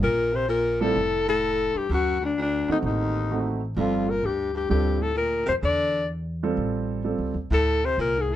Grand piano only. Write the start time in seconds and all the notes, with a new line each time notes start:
0.81 G3 C4 F4 A4
2.68 A3 C4 D#4 F#4
3.31 A3 C4 D#4 F#4
3.77 G3 C4 F4 A4
4.69 G3 C4 F4 A4
6.43 G3 C4 F4 A4
7.04 G3 C4 F4 A4